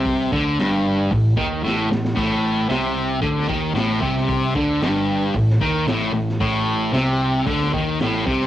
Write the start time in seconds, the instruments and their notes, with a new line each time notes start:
Already playing: picked electric bass C2, distorted electric guitar C3
0.06 kick, open hi-hat
0.32 picked electric bass D2, distorted electric guitar D3, kick
0.58 picked electric bass G1, distorted electric guitar G2, snare, open hi-hat
1.11 picked electric bass A1, distorted electric guitar A2, kick, open hi-hat
1.37 picked electric bass D#2, distorted electric guitar D#3, kick
1.63 picked electric bass A1, distorted electric guitar A2, snare
1.90 picked electric bass A1, distorted electric guitar A2, snare
2.05 snare
2.15 picked electric bass A1, distorted electric guitar A2, kick, open hi-hat, crash
2.69 picked electric bass C2, distorted electric guitar C3, snare, open hi-hat
3.21 picked electric bass D2, distorted electric guitar D3, kick, open hi-hat
3.38 snare
3.48 picked electric bass D#2, distorted electric guitar D#3, kick
3.74 picked electric bass A1, distorted electric guitar A2, snare, open hi-hat
4.01 picked electric bass C2, distorted electric guitar C3, kick
4.17 snare
4.29 kick, open hi-hat
4.55 picked electric bass D2, distorted electric guitar D3, kick
4.80 picked electric bass G1, distorted electric guitar G2, snare, open hi-hat
5.34 picked electric bass A1, distorted electric guitar A2, kick, open hi-hat
5.50 snare
5.61 picked electric bass D#2, distorted electric guitar D#3, kick
5.86 picked electric bass A1, distorted electric guitar A2, snare, open hi-hat
6.12 picked electric bass A1, distorted electric guitar A2
6.29 snare
6.40 picked electric bass A1, distorted electric guitar A2, kick, open hi-hat
6.92 picked electric bass C2, distorted electric guitar C3, snare, open hi-hat
7.47 picked electric bass D2, distorted electric guitar D3, kick, open hi-hat
7.61 snare
7.73 picked electric bass D#2, distorted electric guitar D#3, kick
8.00 picked electric bass A1, distorted electric guitar A2, snare, open hi-hat
8.26 picked electric bass C2, distorted electric guitar C3, kick
8.41 snare